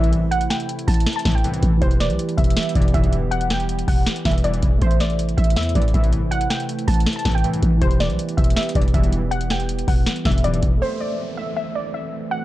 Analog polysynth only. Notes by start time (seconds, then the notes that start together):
Already playing: C2 G2 A2 E3 B3
1.25 C2 G2 A2 E3 B3
1.44 C2 G2 A2 E3 B3
2.75 B1 F#2 G2 D3 E3 B3
2.94 B1 F#2 G2 D3 E3 B3
4.25 B1 F#2 G2 D3 E3 B3
4.44 B1 F#2 G2 D3 E3 B3
5.75 C2 G2 A2 E3 B3
5.94 C2 G2 A2 E3 B3
7.25 C2 G2 A2 E3 B3
7.44 C2 G2 A2 E3 B3
8.75 B1 F#2 G2 D3 E3 B3
8.94 B1 F#2 G2 D3 E3 B3
10.25 B1 F#2 G2 D3 E3 B3
10.44 B1 F#2 G2 D3 E3 B3